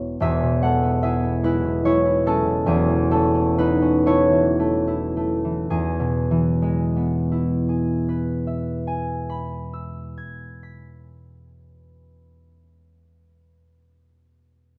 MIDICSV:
0, 0, Header, 1, 2, 480
1, 0, Start_track
1, 0, Key_signature, 4, "major"
1, 0, Tempo, 818554
1, 128, Time_signature, 6, 3, 24, 8
1, 1570, Tempo, 892857
1, 2050, Tempo, 1013514
1, 2530, Tempo, 1107011
1, 3010, Tempo, 980392
1, 3970, Tempo, 1016949
1, 5410, Tempo, 1043478
1, 7287, End_track
2, 0, Start_track
2, 0, Title_t, "Harp"
2, 0, Program_c, 0, 46
2, 0, Note_on_c, 0, 28, 66
2, 0, Note_on_c, 0, 40, 68
2, 0, Note_on_c, 0, 56, 51
2, 0, Note_on_c, 0, 59, 51
2, 0, Note_on_c, 0, 64, 64
2, 0, Note_on_c, 0, 71, 72
2, 0, Note_on_c, 0, 73, 90
2, 0, Note_on_c, 0, 76, 103
2, 111, Note_off_c, 0, 28, 0
2, 119, Note_off_c, 0, 40, 0
2, 119, Note_off_c, 0, 76, 0
2, 119, Note_on_c, 0, 28, 71
2, 125, Note_on_c, 0, 40, 77
2, 128, Note_on_c, 0, 76, 110
2, 134, Note_on_c, 0, 68, 83
2, 144, Note_off_c, 0, 73, 0
2, 249, Note_on_c, 0, 47, 55
2, 356, Note_off_c, 0, 56, 0
2, 363, Note_on_c, 0, 56, 56
2, 367, Note_on_c, 0, 78, 102
2, 372, Note_on_c, 0, 69, 78
2, 479, Note_off_c, 0, 59, 0
2, 486, Note_on_c, 0, 59, 55
2, 595, Note_off_c, 0, 76, 0
2, 598, Note_off_c, 0, 64, 0
2, 602, Note_on_c, 0, 76, 97
2, 603, Note_off_c, 0, 68, 0
2, 605, Note_on_c, 0, 64, 60
2, 610, Note_on_c, 0, 68, 72
2, 719, Note_off_c, 0, 59, 0
2, 726, Note_on_c, 0, 59, 55
2, 771, Note_off_c, 0, 78, 0
2, 835, Note_off_c, 0, 56, 0
2, 836, Note_off_c, 0, 71, 0
2, 841, Note_on_c, 0, 56, 64
2, 843, Note_off_c, 0, 64, 0
2, 845, Note_on_c, 0, 71, 97
2, 850, Note_on_c, 0, 64, 76
2, 960, Note_off_c, 0, 47, 0
2, 967, Note_on_c, 0, 47, 58
2, 1079, Note_off_c, 0, 56, 0
2, 1085, Note_off_c, 0, 64, 0
2, 1085, Note_on_c, 0, 56, 57
2, 1086, Note_on_c, 0, 73, 95
2, 1092, Note_on_c, 0, 64, 75
2, 1196, Note_off_c, 0, 64, 0
2, 1203, Note_on_c, 0, 64, 63
2, 1319, Note_off_c, 0, 56, 0
2, 1323, Note_off_c, 0, 69, 0
2, 1326, Note_on_c, 0, 56, 65
2, 1330, Note_on_c, 0, 69, 105
2, 1337, Note_on_c, 0, 61, 74
2, 1439, Note_off_c, 0, 47, 0
2, 1446, Note_on_c, 0, 47, 52
2, 1553, Note_off_c, 0, 28, 0
2, 1557, Note_off_c, 0, 68, 0
2, 1560, Note_on_c, 0, 28, 82
2, 1562, Note_off_c, 0, 40, 0
2, 1564, Note_on_c, 0, 68, 95
2, 1566, Note_off_c, 0, 59, 0
2, 1569, Note_on_c, 0, 40, 83
2, 1573, Note_on_c, 0, 59, 72
2, 1587, Note_off_c, 0, 47, 0
2, 1587, Note_off_c, 0, 56, 0
2, 1588, Note_off_c, 0, 71, 0
2, 1685, Note_on_c, 0, 52, 65
2, 1732, Note_off_c, 0, 69, 0
2, 1801, Note_on_c, 0, 57, 68
2, 1805, Note_on_c, 0, 69, 106
2, 1806, Note_off_c, 0, 61, 0
2, 1812, Note_on_c, 0, 61, 77
2, 1921, Note_off_c, 0, 61, 0
2, 1927, Note_on_c, 0, 61, 71
2, 1971, Note_off_c, 0, 68, 0
2, 2052, Note_off_c, 0, 64, 0
2, 2057, Note_on_c, 0, 64, 70
2, 2057, Note_on_c, 0, 71, 107
2, 2064, Note_on_c, 0, 63, 83
2, 2162, Note_off_c, 0, 61, 0
2, 2168, Note_on_c, 0, 61, 65
2, 2277, Note_off_c, 0, 57, 0
2, 2279, Note_off_c, 0, 73, 0
2, 2282, Note_on_c, 0, 57, 74
2, 2283, Note_off_c, 0, 64, 0
2, 2285, Note_on_c, 0, 73, 111
2, 2289, Note_on_c, 0, 64, 88
2, 2400, Note_off_c, 0, 52, 0
2, 2405, Note_on_c, 0, 52, 63
2, 2456, Note_off_c, 0, 71, 0
2, 2529, Note_off_c, 0, 57, 0
2, 2534, Note_on_c, 0, 57, 71
2, 2651, Note_off_c, 0, 64, 0
2, 2656, Note_on_c, 0, 64, 71
2, 2679, Note_off_c, 0, 76, 0
2, 2777, Note_off_c, 0, 57, 0
2, 2783, Note_on_c, 0, 57, 65
2, 2899, Note_off_c, 0, 52, 0
2, 2904, Note_on_c, 0, 52, 56
2, 3013, Note_off_c, 0, 40, 0
2, 3016, Note_on_c, 0, 68, 85
2, 3019, Note_on_c, 0, 40, 75
2, 3026, Note_off_c, 0, 28, 0
2, 3031, Note_off_c, 0, 69, 0
2, 3031, Note_off_c, 0, 73, 0
2, 3032, Note_off_c, 0, 52, 0
2, 3032, Note_off_c, 0, 61, 0
2, 3033, Note_off_c, 0, 57, 0
2, 3037, Note_off_c, 0, 63, 0
2, 3160, Note_on_c, 0, 47, 73
2, 3313, Note_on_c, 0, 52, 73
2, 3447, Note_off_c, 0, 59, 0
2, 3466, Note_on_c, 0, 56, 64
2, 3634, Note_on_c, 0, 59, 59
2, 3800, Note_off_c, 0, 64, 0
2, 3806, Note_on_c, 0, 64, 63
2, 3985, Note_off_c, 0, 68, 0
2, 3987, Note_on_c, 0, 68, 58
2, 4175, Note_on_c, 0, 71, 64
2, 4357, Note_on_c, 0, 76, 57
2, 4547, Note_on_c, 0, 80, 63
2, 4746, Note_on_c, 0, 83, 62
2, 4953, Note_on_c, 0, 88, 54
2, 5158, Note_off_c, 0, 40, 0
2, 5162, Note_on_c, 0, 92, 52
2, 5294, Note_off_c, 0, 47, 0
2, 5376, Note_on_c, 0, 95, 51
2, 5441, Note_off_c, 0, 52, 0
2, 5585, Note_off_c, 0, 56, 0
2, 5743, Note_off_c, 0, 59, 0
2, 5904, Note_off_c, 0, 64, 0
2, 6075, Note_off_c, 0, 68, 0
2, 6259, Note_off_c, 0, 71, 0
2, 6435, Note_off_c, 0, 76, 0
2, 6555, Note_off_c, 0, 80, 0
2, 6555, Note_off_c, 0, 83, 0
2, 6556, Note_off_c, 0, 88, 0
2, 6556, Note_off_c, 0, 92, 0
2, 6557, Note_off_c, 0, 95, 0
2, 7287, End_track
0, 0, End_of_file